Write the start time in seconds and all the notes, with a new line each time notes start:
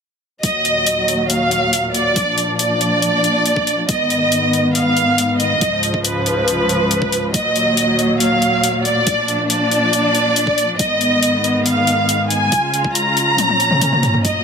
0.43 D#2 A#2 F#3 D#5, kick, closed hi-hat
0.65 closed hi-hat
0.87 closed hi-hat
1.08 closed hi-hat
1.30 F5, closed hi-hat
1.51 closed hi-hat
1.73 closed hi-hat
1.94 D5, closed hi-hat
2.16 F3 D4, kick, closed hi-hat
2.38 closed hi-hat
2.59 D5, closed hi-hat
2.81 closed hi-hat
3.02 closed hi-hat
3.24 closed hi-hat
3.46 closed hi-hat
3.56 kick
3.67 closed hi-hat
3.89 G#2 D#3 B3 D#5, kick, closed hi-hat
4.10 closed hi-hat
4.32 closed hi-hat
4.53 closed hi-hat
4.75 F5, closed hi-hat
4.97 closed hi-hat
5.18 closed hi-hat
5.40 D#5, closed hi-hat
5.61 C#2 G#2 F3, kick, closed hi-hat
5.83 closed hi-hat
5.94 kick
6.04 B4, closed hi-hat
6.26 closed hi-hat
6.48 closed hi-hat
6.69 closed hi-hat
6.91 closed hi-hat
7.02 kick
7.12 closed hi-hat
7.34 D#2 A#2 F#3 D#5, kick, closed hi-hat
7.56 closed hi-hat
7.77 closed hi-hat
7.99 closed hi-hat
8.20 F5, closed hi-hat
8.42 closed hi-hat
8.64 closed hi-hat
8.85 D5, closed hi-hat
9.07 F3 D4, kick, closed hi-hat
9.28 closed hi-hat
9.50 D5, closed hi-hat
9.71 closed hi-hat
9.93 closed hi-hat
10.15 closed hi-hat
10.36 closed hi-hat
10.47 kick
10.58 closed hi-hat
10.79 G#2 D#3 B3 D#5, kick, closed hi-hat
11.01 closed hi-hat
11.23 closed hi-hat
11.44 closed hi-hat
11.66 F5, closed hi-hat
11.87 closed hi-hat
12.09 closed hi-hat
12.30 G#5, closed hi-hat
12.52 C#3 G#3 F4, kick, closed hi-hat
12.74 closed hi-hat
12.85 kick
12.95 A#5, closed hi-hat
13.17 closed hi-hat
13.38 A#2 F3 C#4, closed hi-hat, high tom
13.49 high tom
13.60 closed hi-hat
13.71 mid tom
13.81 closed hi-hat, mid tom
13.92 mid tom
14.03 closed hi-hat, mid tom
14.14 mid tom
14.25 D#2 F#3 D#5, kick, closed hi-hat